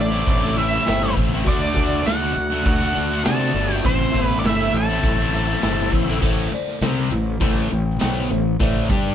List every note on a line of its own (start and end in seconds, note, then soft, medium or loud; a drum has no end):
0.00 0.22 A1 medium
0.00 0.12 A2 medium
0.00 0.54 D4 medium
0.00 0.20 E4 medium
0.00 1.43 E4 medium
0.00 0.21 A4 medium
0.00 1.43 A4 medium
0.00 0.21 C5 medium
0.00 1.44 C5 medium
0.00 0.58 D5 loud
0.00 0.21 E5 medium
0.10 0.44 A3 medium
0.10 0.41 C4 medium
0.10 0.39 E4 medium
0.10 closed hi-hat medium
0.26 0.77 A1 loud
0.26 0.50 E4 medium
0.26 0.50 A4 medium
0.26 0.51 C5 medium
0.26 0.51 E5 medium
0.26 kick loud
0.26 closed hi-hat loud
0.41 0.56 A3 medium
0.41 0.57 C4 medium
0.41 0.57 E4 medium
0.56 0.85 E3 medium
0.56 0.73 A3 medium
0.56 0.71 C4 medium
0.56 0.80 E4 medium
0.56 0.69 E4 medium
0.56 0.81 A4 medium
0.56 0.81 C5 medium
0.56 0.81 E5 medium
0.56 1.13 E5 medium
0.56 closed hi-hat medium
0.60 1.14 E4 medium
0.70 0.87 A3 medium
0.70 0.87 C4 medium
0.70 0.87 E4 medium
0.70 snare soft
0.70 closed hi-hat soft
0.85 1.12 G1 loud
0.85 1.31 A2 loud
0.85 1.31 E3 loud
0.85 1.04 A3 loud
0.85 1.02 C4 loud
0.85 1.10 E4 loud
0.85 1.00 E4 loud
0.85 1.10 A4 medium
0.85 1.10 C5 loud
0.85 1.10 G5 loud
0.85 snare loud
0.85 closed hi-hat loud
1.01 1.35 A3 medium
1.01 1.33 C4 medium
1.01 1.31 E4 medium
1.15 1.42 A1 loud
1.15 1.40 E4 medium
1.15 1.40 A4 medium
1.15 1.40 C5 medium
1.15 1.40 E5 medium
1.15 kick medium
1.15 closed hi-hat medium
1.31 1.48 A3 medium
1.31 1.46 C4 medium
1.31 1.45 E4 medium
1.31 snare soft
1.31 closed hi-hat soft
1.44 1.72 D2 medium
1.44 1.75 D3 loud
1.44 3.83 A3 medium
1.44 1.69 F#4 loud
1.44 1.70 A4 medium
1.44 1.70 D5 medium
1.44 3.83 D5 medium
1.44 2.08 D5 medium
1.44 1.70 F#5 loud
1.44 kick loud
1.44 crash medium
1.48 1.77 A3 loud
1.48 2.03 D4 medium
1.48 1.77 D4 loud
1.48 3.83 F#4 medium
1.48 1.78 F#4 loud
1.62 closed hi-hat soft
1.74 2.01 D2 medium
1.74 2.05 D3 medium
1.74 2.07 A3 medium
1.74 1.99 F#4 loud
1.74 1.99 A4 medium
1.74 1.99 F#5 loud
1.74 kick medium
1.74 closed hi-hat medium
1.78 2.07 D4 medium
1.78 2.08 F#4 medium
2.03 2.31 D2 medium
2.03 2.34 D3 medium
2.03 2.28 F#4 medium
2.03 2.29 A4 medium
2.03 2.29 F#5 medium
2.03 2.66 F#5 medium
2.03 closed hi-hat loud
2.07 2.23 A3 loud
2.07 2.20 D4 medium
2.07 2.62 F#4 medium
2.07 2.19 F#4 medium
2.07 snare loud
2.20 2.36 A3 medium
2.20 2.35 D4 medium
2.20 2.35 F#4 medium
2.33 2.61 D2 loud
2.33 2.58 F#4 medium
2.33 2.59 A4 medium
2.33 2.58 D5 medium
2.33 2.59 E5 medium
2.33 muted distorted electric guitar stroke soft
2.33 closed hi-hat medium
2.38 snare soft
2.50 2.83 A3 medium
2.50 2.80 D4 medium
2.50 2.79 F#4 medium
2.64 2.91 D2 loud
2.64 2.88 F#4 medium
2.64 2.89 A4 medium
2.64 2.89 D5 medium
2.64 3.22 F#5 medium
2.64 2.89 A5 loud
2.64 kick loud
2.64 closed hi-hat loud
2.68 3.22 F#4 medium
2.80 2.95 A3 medium
2.80 2.95 D4 medium
2.80 2.95 F#4 medium
2.94 3.21 D2 medium
2.94 3.23 D3 medium
2.94 3.12 A3 medium
2.94 3.10 D4 loud
2.94 3.18 F#4 medium
2.94 3.09 F#4 medium
2.94 3.19 A4 medium
2.94 3.19 D5 medium
2.94 3.19 A5 medium
2.94 closed hi-hat medium
3.10 3.25 A3 medium
3.10 3.25 D4 medium
3.10 3.26 F#4 medium
3.10 closed hi-hat soft
3.24 3.51 C3 loud
3.24 3.69 D3 loud
3.24 3.41 A3 loud
3.24 3.38 D4 loud
3.24 3.49 F#4 loud
3.24 3.37 F#4 loud
3.24 3.48 A4 medium
3.24 3.68 A4 medium
3.24 3.49 D5 loud
3.24 3.49 F#5 loud
3.24 3.74 A5 loud
3.24 snare loud
3.24 closed hi-hat loud
3.38 3.71 A3 medium
3.38 3.69 D4 medium
3.38 3.67 F#4 medium
3.38 closed hi-hat medium
3.53 3.79 G1 loud
3.53 3.78 F#4 medium
3.53 3.78 A4 medium
3.53 3.78 D5 medium
3.53 3.78 E5 medium
3.53 closed hi-hat medium
3.68 3.85 A3 medium
3.68 3.83 D4 medium
3.68 3.82 F#4 medium
3.68 3.81 G4 medium
3.68 snare soft
3.68 closed hi-hat soft
3.74 3.87 G5 loud
3.82 4.10 A1 loud
3.82 4.42 A2 loud
3.82 4.13 E3 loud
3.82 6.20 A3 medium
3.82 4.14 A3 loud
3.82 4.19 C4 medium
3.82 4.07 E4 medium
3.82 6.20 E4 medium
3.82 4.07 A4 medium
3.82 4.07 C5 medium
3.82 6.20 C5 medium
3.82 4.25 C5 medium
3.82 4.08 E5 medium
3.82 kick loud
3.82 closed hi-hat medium
3.86 4.14 C4 loud
3.86 4.16 E4 loud
4.00 closed hi-hat soft
4.12 4.40 A1 medium
4.12 4.43 E3 medium
4.12 4.44 A3 medium
4.12 4.37 E4 loud
4.12 4.37 A4 medium
4.12 4.37 C5 medium
4.12 4.37 E5 loud
4.12 kick medium
4.12 closed hi-hat medium
4.16 4.33 B3 medium
4.16 4.44 C4 medium
4.16 4.45 E4 medium
4.25 4.39 B4 medium
4.29 closed hi-hat soft
4.37 4.44 D4 medium
4.37 4.45 D5 medium
4.41 4.69 G1 medium
4.41 4.89 A2 medium
4.41 4.74 E3 loud
4.41 4.60 A3 medium
4.41 4.67 E4 medium
4.41 4.72 E4 medium
4.41 4.67 A4 medium
4.41 4.67 C5 medium
4.41 4.67 E5 medium
4.41 closed hi-hat loud
4.46 4.59 C4 loud
4.46 4.58 E4 loud
4.46 4.76 E5 loud
4.46 snare loud
4.59 4.74 A3 medium
4.59 4.74 C4 medium
4.59 4.74 E4 medium
4.71 4.98 A1 loud
4.71 4.96 E4 medium
4.71 4.97 A4 medium
4.71 5.89 A4 medium
4.71 4.97 C5 medium
4.71 4.97 F#5 medium
4.71 muted distorted electric guitar stroke soft
4.71 closed hi-hat medium
4.77 5.90 A5 loud
4.89 5.20 A3 medium
4.89 5.19 C4 medium
4.89 5.17 E4 medium
4.89 closed hi-hat soft
5.02 5.54 A1 loud
5.02 5.27 E4 medium
5.02 5.27 A4 medium
5.02 5.27 C5 medium
5.02 5.27 E5 medium
5.02 kick loud
5.02 closed hi-hat loud
5.18 5.33 A3 medium
5.18 5.34 C4 medium
5.18 5.35 E4 medium
5.32 5.62 E3 medium
5.32 5.50 A3 medium
5.32 5.48 C4 medium
5.32 5.57 E4 medium
5.32 5.46 E4 medium
5.32 5.57 A4 medium
5.32 5.57 C5 medium
5.32 5.58 E5 medium
5.32 closed hi-hat medium
5.47 5.62 A3 medium
5.47 5.63 C4 medium
5.47 5.64 E4 medium
5.47 closed hi-hat soft
5.61 5.88 G1 medium
5.61 6.07 A2 loud
5.61 6.08 E3 loud
5.61 5.78 A3 loud
5.61 5.77 C4 loud
5.61 5.87 E4 loud
5.61 5.75 E4 loud
5.61 5.87 A4 loud
5.61 5.87 C5 loud
5.61 5.87 E5 loud
5.61 snare loud
5.61 closed hi-hat loud
5.77 6.08 A3 medium
5.77 6.06 C4 medium
5.77 6.05 E4 medium
5.92 6.17 A1 medium
5.92 6.16 E4 loud
5.92 6.17 A4 medium
5.92 6.17 C5 medium
5.92 6.17 E5 loud
5.92 kick medium
5.92 closed hi-hat medium
6.06 6.21 A3 medium
6.06 6.21 C4 medium
6.06 6.20 E4 medium
6.06 snare soft
6.06 closed hi-hat soft
6.21 6.50 A1 loud
6.21 6.51 A2 medium
6.21 6.51 E3 loud
6.21 6.51 A3 loud
6.21 6.46 E4 medium
6.21 6.46 A4 loud
6.21 6.46 C5 loud
6.21 6.46 E5 loud
6.21 kick loud
6.21 crash loud
6.36 closed hi-hat soft
6.52 6.76 E4 medium
6.52 6.76 A4 medium
6.52 6.77 C5 medium
6.52 6.77 D5 loud
6.52 muted fingered electric bass stroke soft
6.52 muted distorted electric guitar stroke medium
6.52 closed hi-hat medium
6.67 snare soft
6.67 closed hi-hat soft
6.81 7.09 C2 loud
6.81 7.11 C3 medium
6.81 7.11 G3 medium
6.81 7.11 C4 loud
6.81 7.06 E4 medium
6.81 7.06 A4 medium
6.81 7.07 C5 medium
6.81 7.06 E5 loud
6.81 snare loud
6.81 closed hi-hat loud
6.96 closed hi-hat soft
7.11 7.40 A1 medium
7.11 7.36 A2 medium
7.11 7.36 E3 medium
7.11 7.35 E4 medium
7.11 7.36 A4 medium
7.11 7.36 C5 medium
7.11 7.36 E5 loud
7.11 closed hi-hat medium
7.40 7.69 A1 loud
7.40 7.69 A2 loud
7.40 7.69 E3 loud
7.40 7.70 A3 loud
7.40 7.65 E4 loud
7.40 7.65 A4 loud
7.40 7.65 C5 loud
7.40 7.65 G5 loud
7.40 kick loud
7.40 closed hi-hat loud
7.56 closed hi-hat soft
7.70 7.99 A1 medium
7.70 7.95 A2 medium
7.70 7.95 E3 medium
7.70 7.95 E4 medium
7.70 7.96 A4 medium
7.70 7.96 C5 medium
7.70 7.96 G5 loud
7.70 closed hi-hat medium
7.99 8.29 B1 loud
7.99 8.29 B2 loud
7.99 8.29 F#3 loud
7.99 8.30 B3 loud
7.99 8.25 E4 loud
7.99 8.25 A4 medium
7.99 8.25 C5 medium
7.99 8.25 G5 loud
7.99 snare loud
7.99 closed hi-hat loud
8.30 8.59 A1 medium
8.30 8.54 A2 medium
8.30 8.54 E3 medium
8.30 8.54 E4 medium
8.30 8.54 A4 medium
8.30 8.55 C5 medium
8.30 8.55 E5 medium
8.30 closed hi-hat medium
8.60 8.88 A1 loud
8.60 8.89 A2 loud
8.60 8.88 E3 medium
8.60 8.89 A3 loud
8.60 8.84 E4 loud
8.60 8.84 A4 medium
8.60 8.85 C5 loud
8.60 8.85 D5 loud
8.60 kick loud
8.60 closed hi-hat medium
8.89 9.15 G2 medium
8.89 9.15 G3 medium
8.89 9.15 D4 medium
8.89 9.15 G4 medium
8.89 9.15 D5 medium
8.89 9.15 G5 loud
8.89 kick loud
8.89 closed hi-hat medium
9.05 snare soft
9.05 closed hi-hat medium